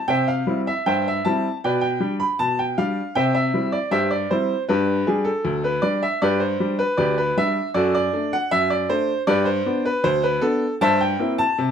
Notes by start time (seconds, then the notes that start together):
0.08 C3 C5 E5 G5
0.28 F5
0.47 G3 C4 E4
0.67 E5
0.86 G2 C5 E5 G5
1.08 E5
1.25 G3 C4 E4 A5
1.64 B2 B4 D5 G5
1.81 G5
2.00 G3 D4
2.20 B5
2.39 B2 A5
2.59 G5
2.78 G3 D4 F5
3.15 C3 C5 E5 G5
3.35 E5
3.54 G3 C4 E4
3.72 D5
3.91 G2 G4 C5 E5
4.11 D5
4.31 G3 C4 E4 C5
4.69 G2 D4 G4 B4
5.07 G3 D4 G#4
5.25 A4
5.45 D2
5.64 B4
5.82 G3 D4 D5
6.03 E5
6.22 G2 G4 B4 D5
6.40 C5
6.60 G3 D4
6.79 B4
6.97 D2 G4 B4 D5
7.18 B4
7.37 G3 D4 E5
7.74 F#2 F#4 A4 D5
7.95 D5
8.13 A3 D4
8.33 F#5
8.51 F#2 E5
8.70 D5
8.89 A3 D4 C5
9.27 G2 G4 B4 D5
9.45 C5
9.66 B3 D4
9.85 B4
10.04 D2 C5
10.23 B4
10.41 B3 D4 A4
10.81 G2 C5 E5 A5
11.01 G5
11.19 A#3 C4 E4
11.38 A5
11.58 C3